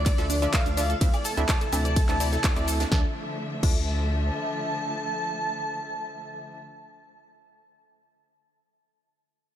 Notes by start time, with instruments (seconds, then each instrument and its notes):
Already playing: analog synth bass D2, string section D3 F3 A3, analog synth lead D5, digital synth lead D5
0.06 synth arpeggio sound D5, kick, clap, closed hi-hat, ride, cabasa
0.18 analog synth bass D2, synth pluck D4 F4 A4 E5, synth arpeggio sound A4, snare, closed hi-hat, cabasa
0.30 synth arpeggio sound D4, open hi-hat, cabasa
0.42 synth pluck D4 F4 A4 E5, synth arpeggio sound D5, closed hi-hat, cabasa
0.53 synth arpeggio sound A4, analog synth lead F5, digital synth lead F5, kick, snare, clap, closed hi-hat, ride, cabasa
0.66 analog synth bass D2, synth arpeggio sound D4, closed hi-hat, cabasa
0.77 synth pluck D4 F4 A4 E5, synth arpeggio sound D5, snare, closed hi-hat, open hi-hat, cabasa
0.90 synth arpeggio sound A4, closed hi-hat, cabasa
1.01 analog synth bass D2, string section C3 E3 E4, synth pluck C4 E4 A4 E5, synth arpeggio sound D4, kick, closed hi-hat, ride, cabasa
1.13 synth arpeggio sound D5, closed hi-hat, cabasa, high woodblock
1.24 synth arpeggio sound A4, analog synth lead A5, digital synth lead A5, closed hi-hat, open hi-hat, cabasa
1.37 analog synth bass D2, synth pluck C4 E4 A4 E5, synth arpeggio sound D4, closed hi-hat, cabasa
1.49 synth arpeggio sound D5, kick, snare, clap, closed hi-hat, ride, cabasa
1.61 synth arpeggio sound A4, closed hi-hat, cabasa
1.73 analog synth bass D2, synth pluck C4 E4 A4 E5, synth arpeggio sound D4, closed hi-hat, open hi-hat, cabasa, high woodblock
1.85 synth arpeggio sound D5, closed hi-hat, cabasa
1.96 synth arpeggio sound A4, kick, closed hi-hat, ride, cabasa
2.09 analog synth bass D2, synth pluck C4 E4 A4 E5, synth arpeggio sound D4, clap, closed hi-hat, cabasa
2.20 synth pluck C4 E4 A4 E5, synth arpeggio sound D5, closed hi-hat, open hi-hat, cabasa
2.33 synth arpeggio sound A4, snare, closed hi-hat, cabasa
2.43 synth arpeggio sound D4, kick, snare, clap, closed hi-hat, ride, cabasa
2.56 analog synth bass D2, synth pluck C4 E4 A4 E5, synth arpeggio sound D5, closed hi-hat, cabasa
2.68 synth arpeggio sound A4, closed hi-hat, open hi-hat, cabasa
2.80 synth arpeggio sound D4, snare, closed hi-hat, cabasa
2.92 analog synth bass D2, string section D3 F3 A3 E5, synth arpeggio sound D4, synth pluck D4 F4 A4 E5, analog synth lead A5, digital synth lead A5, kick, snare
3.63 analog synth bass D2, synth arpeggio sound D4, synth pluck D4 F4 A4 E5, analog synth lead A5, digital synth lead A5, kick, crash